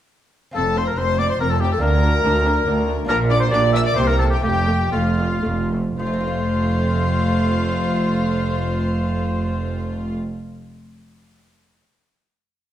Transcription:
0.51 cello section F2, lute C4 F4, violin section A4
0.55 double bass section F1, lute F2, viola section C4, oboe A4, violin section A5
0.77 viola section C4, oboe C5, violin section C5 C6
0.87 oboe A#4, violin section A#4 A#5
0.97 double bass section F1, cello section F2, lute F2, viola section C4, oboe C5, violin section C5 C6
1.19 viola section C4, oboe D5, violin section D5 D6
1.30 oboe C5, violin section C5 C6
1.40 double bass section F1, cello section F2, lute F2, viola section C4, oboe A#4, violin section A#4 A#5
1.50 oboe A4, violin section A4 A5
1.61 viola section C4, oboe G4, violin section G4 G5
1.72 oboe A4, violin section A4 A5
1.78 double bass section D2, lute A#3 D4 F4
1.82 cello section D2, lute D2, viola section D4, oboe A#4, violin section A#4 A#5
2.04 viola section D4
2.24 cello section D2, double bass section D2, lute D2, viola section D4
2.46 viola section D4
2.66 double bass section D2, cello section D2, lute D2, viola section D4
2.88 viola section D4
3.05 double bass section A#1, cello section A#2, lute A#3 D4 F4, violin section A#4, oboe A#4
3.09 lute A#2, viola section D4, violin section A#5
3.30 viola section D4, oboe D5, violin section D5 D6
3.40 oboe C5, violin section C5 C6
3.48 cello section A#2, lute A#3 D4 G4, oboe D5
3.52 double bass section A#1, lute A#2, viola section D4, violin section D5 D6
3.73 viola section D4, oboe E5, violin section E5 E6
3.85 oboe D5, violin section D5 D6
3.92 lute A#3 E4 G4, oboe C5, violin section C5
3.96 double bass section C2, lute C3, cello section C3, viola section A#3, violin section C6
4.07 oboe A#4, violin section A#4 A#5
4.18 viola section A#3, oboe A4, violin section A4 A5
4.30 oboe G4, violin section G4 G5
4.39 cello section F2, lute A3 C4 F4, viola section A3, oboe G4
4.43 double bass section F1, lute F2, violin section G4 G5
4.67 viola section A3
4.92 double bass section F1, cello section F2, lute F2, viola section A3, oboe F4, violin section F4 F5
5.18 viola section A3
5.44 double bass section F1, cello section F2, lute F2, viola section A3
5.72 viola section A3
5.98 double bass section F1, cello section F2, lute F3, viola section A3, violin section F4 F5, oboe C5
6.07 lute A3
6.13 lute C4
6.21 lute F4
6.27 lute C5

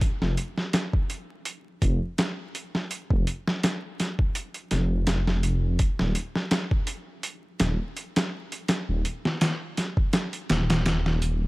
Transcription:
0.01 kick, closed hi-hat
0.22 detuned saw bass F1, snare
0.37 closed hi-hat
0.58 snare
0.73 snare, closed hi-hat
0.93 kick
1.10 closed hi-hat
1.45 closed hi-hat
1.82 detuned saw bass F1, kick, closed hi-hat
2.18 snare, closed hi-hat
2.55 closed hi-hat
2.75 snare
2.91 closed hi-hat
3.10 detuned saw bass F1, kick
3.27 closed hi-hat
3.48 snare
3.63 snare, closed hi-hat
4.00 snare, closed hi-hat
4.19 kick
4.35 closed hi-hat
4.54 closed hi-hat
4.71 detuned saw bass F1, snare, closed hi-hat
5.07 snare, closed hi-hat
5.27 snare
5.43 closed hi-hat
5.79 kick, closed hi-hat
5.99 detuned saw bass D#1, snare
6.15 closed hi-hat
6.35 snare
6.51 snare, closed hi-hat
6.71 kick
6.87 closed hi-hat
7.23 closed hi-hat
7.60 detuned saw bass D#1, snare, closed hi-hat
7.97 closed hi-hat
8.16 snare, closed hi-hat
8.52 closed hi-hat
8.68 snare, closed hi-hat
8.89 detuned saw bass D#1
9.05 closed hi-hat
9.25 snare
9.41 snare, closed hi-hat
9.77 snare, closed hi-hat
9.97 kick
10.13 snare, closed hi-hat
10.33 closed hi-hat
10.50 detuned saw bass D#1, snare, closed hi-hat
10.70 snare, closed hi-hat
10.86 snare, closed hi-hat
11.06 detuned saw bass D#1, snare
11.22 detuned saw bass D#1, closed hi-hat

